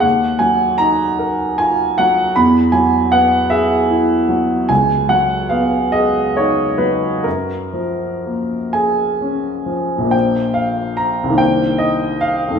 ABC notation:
X:1
M:6/8
L:1/8
Q:3/8=49
K:F#
V:1 name="Grand piano"
f g a2 g f | b g f =e z2 | g f e d c B | A3 g3 |
[K:Bb] g f b g e f |]
V:2 name="Grand piano"
D,, F, D A E F, | =E,, F, B, G =E F, | C,, F, B, G D F, | F,, E, A, G C E, |
[K:Bb] [B,,,F,B,Dc]3 [C,,E,B,Dc]3 |]